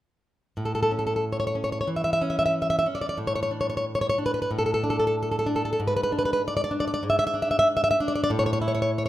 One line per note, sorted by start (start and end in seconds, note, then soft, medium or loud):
0.57 1.84 A2 soft
0.65 0.74 A4 soft
0.75 0.81 A4 medium
0.83 0.91 A4 medium
0.91 1.54 C#4 soft
0.99 1.05 A4 soft
1.07 1.15 A4 soft
1.16 1.24 A4 soft
1.33 1.39 C#5 soft
1.40 1.46 C#5 medium
1.47 1.56 C#5 medium
1.55 2.20 C#4 soft
1.64 1.71 C#5 soft
1.72 1.80 C#5 soft
1.81 1.89 C#5 soft
1.87 2.85 E3 soft
1.96 2.03 E5 soft
2.04 2.12 E5 medium
2.13 2.21 E5 medium
2.21 2.85 C#4 soft
2.30 2.38 E5 medium
2.39 2.44 E5 medium
2.46 2.54 E5 medium
2.62 2.69 E5 medium
2.70 2.77 E5 medium
2.79 2.86 E5 medium
2.86 3.18 C#4 soft
2.95 3.00 D5 medium
3.01 3.08 D5 medium
3.09 3.18 D5 medium
3.18 4.45 A2 soft
3.27 3.34 C#5 medium
3.35 3.42 C#5 medium
3.43 3.51 C#5 medium
3.51 4.17 D4 soft
3.61 3.68 C#5 soft
3.70 3.76 C#5 medium
3.77 3.85 C#5 medium
3.95 4.00 C#5 medium
4.01 4.08 C#5 medium
4.10 4.17 C#5 medium
4.18 4.82 D4 soft
4.26 4.33 B4 soft
4.34 4.41 B4 soft
4.42 4.50 B4 medium
4.51 5.76 A2 soft
4.59 4.65 A4 soft
4.66 4.73 A4 soft
4.74 4.82 A4 soft
4.84 5.45 D4 soft
4.90 4.98 A4 soft
5.00 5.06 A4 medium
5.07 5.15 A4 medium
5.23 5.30 A4 soft
5.32 5.38 A4 soft
5.39 5.47 A4 medium
5.46 5.79 D4 soft
5.56 5.63 A4 medium
5.65 5.72 A4 medium
5.73 5.80 A4 medium
5.80 7.01 G#2 medium
5.88 5.95 B4 medium
5.97 6.02 B4 medium
6.03 6.11 B4 medium
6.12 6.70 D4 soft
6.19 6.24 B4 medium
6.25 6.32 B4 medium
6.33 6.41 B4 medium
6.48 6.55 D5 medium
6.57 6.63 D5 medium
6.64 6.72 D5 medium
6.71 7.33 D4 soft
6.80 6.86 D5 medium
6.88 6.93 D5 medium
6.94 7.03 D5 medium
7.03 8.25 G#2 soft
7.10 7.18 E5 medium
7.19 7.26 E5 medium
7.27 7.35 E5 medium
7.34 7.99 D4 soft
7.42 7.50 E5 medium
7.51 7.58 E5 medium
7.59 7.67 E5 medium
7.77 7.83 E5 medium
7.84 7.90 E5 medium
7.91 7.99 E5 medium
8.00 8.30 D4 soft
8.08 8.14 D5 medium
8.16 8.23 D5 medium
8.24 8.30 D5 medium
8.30 9.09 A2 medium
8.39 8.45 C#5 medium
8.46 8.52 C#5 medium
8.53 8.60 C#5 medium
8.62 9.09 E4 soft
8.68 8.73 C#5 medium
8.75 8.81 C#5 medium
8.82 8.90 C#5 medium
8.98 9.04 C#5 medium